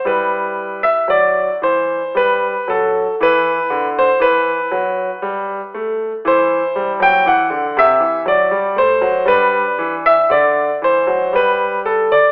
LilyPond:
<<
  \new Staff \with { instrumentName = "Grand piano" } { \time 3/4 \key e \minor \tempo 4 = 58 << { b'8. e''16 d''8 c''8 b'8 a'8 | b'8. c''16 b'4.~ b'16 r16 | \key g \major c''8. g''16 fis''8 e''8 d''8 c''8 | b'8. e''16 d''8 c''8 b'8 a'16 d''16 | } \\ { e'2 r4 | e'2. | e'2 r4 | d'2 r4 | } >> }
  \new Staff \with { instrumentName = "Grand piano" } { \clef bass \time 3/4 \key e \minor g4 fis8 e8 g8 fis8 | e8 d8 e8 fis8 g8 a8 | \key g \major e8 g16 fis16 e16 d16 c16 e16 fis16 g16 a16 fis16 | g8 e8 d8 e16 fis16 g4 | }
>>